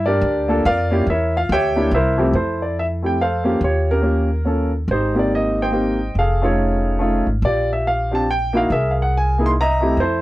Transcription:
0.00 0.20 G2 medium
0.06 0.47 D4 medium
0.06 0.60 G4 medium
0.06 0.60 A#4 medium
0.06 0.60 D5 medium
0.21 0.63 D2 loud
0.48 0.62 A#3 medium
0.48 0.62 D4 medium
0.48 0.63 F4 medium
0.48 0.63 A4 medium
0.65 1.06 F2 loud
0.65 1.05 F4 medium
0.65 1.05 A#4 medium
0.65 1.05 D5 medium
0.65 1.05 F5 loud
0.91 1.05 A#3 medium
0.91 1.05 C#4 medium
0.91 1.05 E4 medium
0.91 1.06 G4 medium
1.07 1.48 E2 medium
1.07 1.35 E4 medium
1.07 1.35 A#4 medium
1.07 1.35 C#5 medium
1.07 1.35 E5 medium
1.37 1.50 F4 medium
1.37 1.50 F5 loud
1.49 1.90 D2 medium
1.49 1.76 G4 medium
1.49 1.91 C#5 medium
1.49 1.90 E5 medium
1.49 1.90 G5 loud
1.76 1.89 A#3 medium
1.76 1.90 D4 medium
1.76 1.90 E4 medium
1.76 1.90 G4 medium
1.91 2.32 C2 loud
1.91 2.18 E4 medium
1.91 2.26 A#4 medium
1.91 2.26 C5 medium
1.91 2.25 E5 medium
2.17 2.31 F2 medium
2.17 2.32 A3 medium
2.17 2.32 C4 medium
2.17 2.32 E4 medium
2.17 2.33 G4 medium
2.33 3.57 F2 medium
2.33 3.01 E4 medium
2.33 3.00 A4 medium
2.33 2.63 C5 medium
2.62 2.76 D5 medium
2.79 2.85 E5 medium
3.02 3.17 A3 medium
3.02 3.17 C4 medium
3.02 3.17 E4 soft
3.02 3.17 G4 medium
3.02 3.20 G5 medium
3.21 3.60 A4 medium
3.21 3.60 C5 medium
3.21 3.60 F5 medium
3.44 3.58 A#3 medium
3.44 3.59 C#4 medium
3.44 3.59 F4 medium
3.44 3.59 G4 medium
3.61 4.84 D#2 medium
3.61 3.91 G4 medium
3.61 3.91 C#5 medium
3.65 4.02 F4 medium
3.91 4.01 C#4 soft
3.91 4.02 G4 medium
3.91 4.71 A#4 medium
4.02 4.27 A#3 medium
4.02 4.28 C#4 medium
4.02 4.28 F4 medium
4.02 4.28 G4 medium
4.45 4.70 A#3 soft
4.45 4.70 C#4 medium
4.45 4.71 F4 soft
4.45 4.71 A4 medium
4.88 6.11 G#1 medium
4.88 5.15 C5 medium
4.92 5.14 D#4 medium
4.92 5.15 G4 medium
5.14 5.69 A#3 medium
5.14 5.70 C4 medium
5.14 5.70 D#4 medium
5.14 5.70 G4 medium
5.19 5.32 D5 medium
5.35 5.61 D#5 medium
5.62 6.14 C5 medium
5.62 6.14 D#5 medium
5.62 6.14 G5 medium
5.72 5.97 A#3 medium
5.72 5.97 C4 medium
5.72 5.98 D#4 medium
5.72 5.98 G4 medium
6.15 7.23 F1 medium
6.15 6.43 G#4 medium
6.15 6.43 A4 medium
6.15 6.45 F5 medium
6.42 6.97 A3 medium
6.42 6.97 C#4 medium
6.42 6.97 D#4 medium
6.42 6.97 F4 medium
6.42 7.24 G#4 medium
6.42 7.25 A4 medium
6.42 7.24 C#5 medium
6.99 7.24 A3 medium
6.99 7.24 C#4 medium
6.99 7.25 D#4 medium
6.99 7.25 F4 medium
7.26 7.41 G#1 medium
7.42 8.65 A#1 medium
7.42 8.09 F4 medium
7.42 8.10 G4 medium
7.42 7.69 D5 medium
7.73 7.85 E5 medium
7.87 8.14 F5 medium
8.11 8.25 C4 medium
8.11 8.25 D4 soft
8.11 8.26 F4 medium
8.11 8.26 G4 medium
8.11 8.28 A5 medium
8.31 8.57 G5 loud
8.53 8.67 A#3 medium
8.53 8.68 D#4 medium
8.53 8.68 E4 medium
8.53 8.68 F#4 medium
8.53 8.71 F5 medium
8.70 9.93 C2 medium
8.70 9.36 G#4 medium
8.70 9.37 A#4 medium
8.70 8.90 E5 loud
8.91 8.97 F5 medium
9.02 9.14 F#5 medium
9.17 9.43 G#5 medium
9.38 9.52 A#3 medium
9.38 9.53 D#4 medium
9.38 9.53 E4 medium
9.38 9.53 G#4 medium
9.46 9.51 C6 loud
9.61 9.97 D#5 medium
9.61 9.97 E5 medium
9.61 10.01 A#5 loud
9.81 9.95 A3 medium
9.81 9.95 C4 medium
9.81 9.95 E4 medium
9.81 9.96 G4 medium
9.97 10.22 F2 medium
9.97 10.22 C5 medium
10.02 10.22 E4 medium
10.02 10.22 A4 medium

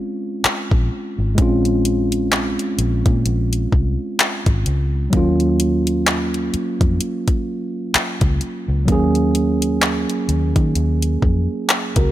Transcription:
0.00 1.33 G#3 medium
0.00 1.34 C4 medium
0.00 1.35 C#4 medium
0.00 1.36 F4 medium
0.45 muted fingered electric bass stroke soft
0.45 clap loud
0.71 0.88 A#1 medium
0.71 kick medium
1.18 1.35 G#1 medium
1.35 2.55 A#1 loud
1.35 5.08 G#3 medium
1.35 5.09 C4 medium
1.35 kick loud
1.35 closed hi-hat medium
1.39 5.10 C#4 medium
1.39 5.11 F4 medium
1.65 closed hi-hat soft
1.85 closed hi-hat medium
2.12 closed hi-hat medium
2.32 clap loud
2.32 closed hi-hat medium
2.59 closed hi-hat soft
2.78 3.02 A#1 medium
2.78 closed hi-hat medium
3.06 3.23 A#2 medium
3.06 kick medium
3.06 closed hi-hat soft
3.26 3.66 A#1 medium
3.26 closed hi-hat medium
3.53 closed hi-hat soft
3.72 3.96 C2 medium
3.72 kick medium
4.19 clap loud
4.19 closed hi-hat medium
4.46 4.63 G#1 medium
4.46 kick medium
4.46 closed hi-hat soft
4.66 5.06 C#2 medium
4.66 closed hi-hat soft
5.10 6.50 D#2 loud
5.10 8.83 F#3 medium
5.10 8.84 A#3 medium
5.10 kick loud
5.10 closed hi-hat medium
5.15 8.85 C#4 medium
5.15 8.86 F4 medium
5.40 closed hi-hat soft
5.60 closed hi-hat medium
5.87 closed hi-hat medium
6.07 clap loud
6.07 closed hi-hat medium
6.34 closed hi-hat soft
6.54 muted fingered electric bass stroke soft
6.54 closed hi-hat medium
6.81 6.98 F2 medium
6.81 kick medium
6.81 closed hi-hat soft
7.01 closed hi-hat medium
7.28 kick medium
7.28 closed hi-hat soft
7.94 muted fingered electric bass stroke soft
7.94 clap loud
7.94 closed hi-hat medium
8.21 8.38 C#2 medium
8.21 kick medium
8.21 closed hi-hat soft
8.41 closed hi-hat soft
8.68 8.85 C#2 medium
8.85 10.05 D#2 medium
8.85 12.12 F#3 medium
8.85 12.12 A#3 medium
8.85 kick loud
8.85 closed hi-hat medium
8.90 12.12 C#4 medium
8.90 11.67 G#4 medium
9.15 closed hi-hat soft
9.35 closed hi-hat medium
9.62 closed hi-hat medium
9.82 clap loud
9.82 closed hi-hat medium
10.10 closed hi-hat soft
10.29 10.52 D#2 medium
10.29 closed hi-hat medium
10.56 10.73 D#3 medium
10.56 kick medium
10.56 closed hi-hat soft
10.75 11.16 D#2 medium
10.75 closed hi-hat medium
11.02 closed hi-hat medium
11.22 11.46 F2 medium
11.22 kick medium
11.69 clap loud
11.69 closed hi-hat medium
11.96 12.12 C#2 medium
11.96 12.12 F#4 medium
11.96 12.12 A#4 medium
11.96 kick medium
11.96 closed hi-hat soft

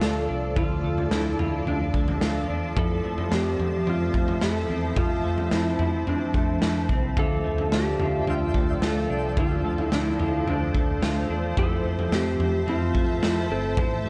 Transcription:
0.00 0.26 D2 medium
0.00 0.55 D3 medium
0.00 7.13 F3 medium
0.00 0.84 A3 medium
0.00 0.28 D4 medium
0.00 0.57 F4 medium
0.00 2.73 A4 medium
0.00 0.58 A4 medium
0.00 2.73 D5 medium
0.00 11.53 A5 medium
0.00 snare medium
0.29 0.56 C2 medium
0.29 1.11 D4 soft
0.56 0.81 D2 medium
0.56 2.76 D3 medium
0.56 1.39 F4 medium
0.56 1.12 F4 medium
0.56 kick medium
0.56 floor tom loud
0.84 1.08 D2 medium
0.84 1.94 A3 medium
0.98 floor tom medium
1.11 1.36 D2 medium
1.11 1.66 D4 medium
1.11 1.68 E4 medium
1.11 snare loud
1.39 1.63 D2 medium
1.39 2.22 F4 medium
1.39 floor tom medium
1.66 1.91 D2 medium
1.66 2.48 D4 medium
1.66 2.46 D4 medium
1.66 floor tom medium
1.94 2.18 D2 medium
1.94 3.04 A3 medium
1.94 kick medium
2.08 floor tom medium
2.21 2.45 D2 medium
2.21 2.77 F4 medium
2.21 snare medium
2.49 2.73 E2 medium
2.49 2.82 D4 soft
2.76 3.01 F2 medium
2.76 4.96 F3 medium
2.76 3.59 E4 medium
2.76 3.34 A4 medium
2.76 7.13 C5 medium
2.76 7.13 E5 medium
2.76 kick loud
2.76 floor tom loud
3.04 3.28 F2 medium
3.04 4.14 A3 medium
3.18 floor tom medium
3.31 3.56 F2 medium
3.31 3.85 C4 medium
3.31 3.89 G4 medium
3.31 snare medium
3.59 3.83 F2 medium
3.59 floor tom medium
3.86 4.11 F2 medium
3.86 4.68 C4 medium
3.86 4.45 F4 medium
3.86 floor tom medium
4.14 4.38 F2 medium
4.14 5.24 A3 medium
4.14 kick medium
4.28 floor tom medium
4.41 4.66 F2 medium
4.41 4.97 E4 medium
4.41 4.99 A4 medium
4.41 snare loud
4.69 4.94 E2 medium
4.69 5.50 C4 medium
4.96 5.21 F2 medium
4.96 7.17 F3 medium
4.96 5.54 F4 medium
4.96 kick loud
4.96 floor tom loud
5.24 5.48 F2 medium
5.24 6.34 A3 medium
5.38 floor tom medium
5.51 5.76 F2 medium
5.51 6.06 C4 soft
5.51 6.09 E4 medium
5.51 snare loud
5.79 6.04 F2 medium
5.79 6.60 E4 medium
5.79 floor tom medium
6.07 6.31 F2 medium
6.07 6.88 C4 medium
6.07 6.86 D4 medium
6.07 floor tom medium
6.34 6.58 F2 medium
6.34 7.44 A3 medium
6.34 kick medium
6.62 6.86 F2 medium
6.62 7.17 E4 medium
6.62 snare loud
6.89 7.14 C2 medium
6.89 7.22 C4 medium
6.89 kick medium
7.16 7.41 D2 medium
7.16 9.36 D3 medium
7.16 13.73 F3 medium
7.16 8.00 F4 medium
7.16 11.53 A4 medium
7.16 7.75 A4 medium
7.16 9.35 D5 medium
7.16 kick loud
7.16 floor tom medium
7.44 7.69 D2 medium
7.44 8.54 A3 medium
7.44 8.80 E5 medium
7.58 floor tom medium
7.64 8.97 G5 medium
7.72 7.96 D2 medium
7.72 8.26 D4 medium
7.72 8.30 G4 medium
7.72 snare loud
7.99 8.23 D2 medium
7.99 8.82 F4 medium
7.99 floor tom medium
8.27 8.51 D2 medium
8.27 9.09 D4 medium
8.27 8.85 F4 medium
8.27 floor tom medium
8.54 8.79 D2 medium
8.54 9.64 A3 medium
8.54 kick medium
8.81 9.06 D2 medium
8.81 9.37 F4 medium
8.81 9.40 A4 medium
8.81 snare medium
9.10 9.37 C2 medium
9.10 9.91 D4 medium
9.37 9.61 D2 medium
9.37 11.57 D3 medium
9.37 10.20 F4 medium
9.37 9.80 F4 medium
9.37 14.09 C5 medium
9.37 kick loud
9.37 floor tom medium
9.64 9.89 D2 medium
9.64 10.74 A3 medium
9.78 9.94 E4 medium
9.78 floor tom medium
9.92 10.16 D2 medium
9.92 10.46 D4 medium
9.92 10.49 E4 medium
9.92 snare loud
10.19 10.44 D2 medium
10.19 11.02 F4 medium
10.19 floor tom medium
10.47 10.71 D2 medium
10.47 11.29 D4 medium
10.47 11.27 D4 medium
10.47 floor tom medium
10.75 10.99 D2 medium
10.75 11.84 A3 medium
10.75 kick medium
11.02 11.26 D2 medium
11.02 11.57 F4 medium
11.02 snare loud
11.29 11.54 E2 medium
11.29 11.63 D4 medium
11.55 11.81 F2 medium
11.55 13.78 F3 medium
11.55 13.22 E4 medium
11.55 12.15 A4 medium
11.55 14.09 E5 medium
11.55 14.09 A5 medium
11.55 kick loud
11.55 floor tom medium
11.84 12.09 F2 medium
11.84 12.94 A3 medium
11.99 floor tom medium
12.11 12.36 F2 medium
12.11 12.67 C4 medium
12.11 12.65 G4 medium
12.11 snare loud
12.39 12.64 F2 medium
12.39 floor tom medium
12.67 12.92 F2 medium
12.67 13.50 C4 medium
12.67 13.47 F4 medium
12.67 floor tom medium
12.94 13.19 F2 medium
12.94 14.05 A3 medium
12.94 kick medium
13.22 13.47 F2 medium
13.22 13.78 E4 medium
13.22 snare medium
13.50 13.74 G1 medium
13.50 14.09 C4 medium
13.50 13.79 A4 medium
13.77 14.02 A1 medium
13.77 14.09 A2 medium
13.77 14.09 E4 medium
13.77 14.09 G4 medium
13.77 14.09 C5 medium
13.77 kick loud
13.77 floor tom loud
14.04 14.09 A1 medium
14.04 14.09 G3 medium

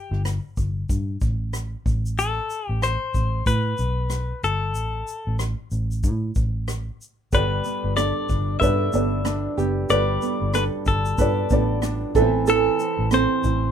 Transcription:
0.00 0.22 G4 medium
0.11 0.38 G1 loud
0.11 cross-stick soft
0.25 cross-stick loud
0.25 shaker medium
0.57 0.83 G1 medium
0.57 kick medium
0.57 shaker soft
0.89 1.16 G2 medium
0.89 kick medium
0.89 shaker medium
1.21 1.74 A1 medium
1.21 kick loud
1.21 shaker soft
1.53 cross-stick medium
1.53 shaker medium
1.86 2.38 A1 medium
1.86 kick loud
1.86 shaker soft
2.06 shaker soft
2.19 2.69 A4 medium
2.19 shaker medium
2.50 shaker soft
2.69 2.96 A1 loud
2.69 2.83 G4 medium
2.82 3.47 C5 medium
2.82 cross-stick loud
2.82 shaker medium
3.14 3.41 A1 loud
3.14 kick medium
3.14 shaker soft
3.46 3.73 A2 loud
3.46 4.44 B4 medium
3.46 kick medium
3.46 shaker medium
3.78 4.32 B1 medium
3.78 shaker soft
4.10 cross-stick medium
4.10 shaker medium
4.43 4.75 G1 medium
4.43 5.36 A4 medium
4.43 shaker soft
4.75 5.02 A1 loud
4.75 shaker medium
5.07 shaker soft
5.27 5.53 A1 medium
5.39 cross-stick loud
5.39 shaker medium
5.71 6.05 A1 medium
5.71 shaker soft
5.91 shaker soft
6.04 6.30 A2 loud
6.04 kick loud
6.04 shaker medium
6.35 6.89 A1 medium
6.35 kick loud
6.35 shaker medium
6.68 cross-stick loud
6.68 shaker medium
7.01 shaker soft
7.32 7.59 G1 loud
7.32 9.88 G3 medium
7.32 8.45 B3 medium
7.32 8.46 G4 medium
7.32 8.46 A4 medium
7.32 7.96 A4 medium
7.32 8.59 B4 medium
7.32 7.96 B4 medium
7.32 8.46 D5 medium
7.32 kick loud
7.32 shaker medium
7.64 8.93 B3 soft
7.64 shaker soft
7.84 8.11 G1 loud
7.97 8.92 D4 medium
7.97 8.61 A4 medium
7.97 8.59 D5 medium
7.97 cross-stick loud
7.97 shaker medium
8.29 8.56 G1 medium
8.29 9.25 D4 medium
8.29 kick medium
8.29 shaker soft
8.60 8.88 G2 loud
8.60 8.90 B3 medium
8.60 8.90 G4 medium
8.60 9.89 A4 medium
8.60 8.90 A4 medium
8.60 9.89 B4 medium
8.60 8.91 D5 medium
8.60 9.90 E5 medium
8.60 kick medium
8.60 shaker medium
8.93 9.46 G1 medium
8.93 9.79 B3 medium
8.93 9.57 B3 medium
8.93 9.24 D4 medium
8.93 9.79 G4 medium
8.93 9.79 A4 medium
8.93 9.80 D5 medium
8.93 shaker medium
9.25 10.54 D4 medium
9.25 10.85 D4 medium
9.25 cross-stick loud
9.25 shaker medium
9.57 9.84 F#1 medium
9.57 10.21 B3 medium
9.57 12.15 G4 medium
9.57 shaker soft
9.89 10.16 G1 medium
9.89 12.15 G3 medium
9.89 11.03 B3 medium
9.89 11.04 G4 medium
9.89 10.54 A4 medium
9.89 11.04 A4 medium
9.89 11.17 B4 medium
9.89 10.54 D5 medium
9.89 11.04 D5 medium
9.89 shaker medium
10.22 11.49 B3 medium
10.22 shaker soft
10.41 10.68 G1 loud
10.54 11.51 D4 medium
10.54 11.18 A4 medium
10.54 10.64 B4 medium
10.54 cross-stick loud
10.54 shaker medium
10.86 11.13 G1 medium
10.86 11.82 D4 medium
10.86 11.80 A4 medium
10.86 kick medium
10.86 shaker soft
11.05 shaker soft
11.18 11.45 G2 medium
11.18 11.47 B3 medium
11.18 11.48 G4 medium
11.18 12.48 A4 medium
11.18 11.48 A4 medium
11.18 12.15 B4 medium
11.18 11.48 D5 medium
11.18 kick medium
11.18 shaker medium
11.50 12.04 A1 medium
11.50 12.23 B3 medium
11.50 12.14 B3 medium
11.50 11.82 D4 medium
11.50 12.16 G4 medium
11.50 12.15 A4 medium
11.50 12.16 D5 medium
11.50 kick medium
11.50 shaker medium
11.82 12.23 D4 medium
11.82 cross-stick medium
11.82 shaker medium
12.15 12.68 A1 loud
12.15 12.47 E3 medium
12.15 12.23 B3 medium
12.15 13.29 E4 medium
12.15 12.47 A4 medium
12.15 13.29 A4 medium
12.15 13.29 E5 medium
12.15 kick medium
12.15 shaker soft
12.22 13.31 C4 medium
12.47 13.72 E3 medium
12.47 13.72 A4 medium
12.47 13.12 A4 medium
12.47 13.09 A4 loud
12.47 shaker medium
12.80 13.72 C4 medium
12.80 shaker soft
12.99 13.25 A1 loud
13.11 13.72 C4 medium
13.11 13.72 A4 medium
13.11 13.72 C5 loud
13.11 cross-stick loud
13.11 shaker medium
13.44 13.70 A1 medium
13.44 13.72 E4 medium
13.44 kick medium
13.44 shaker soft

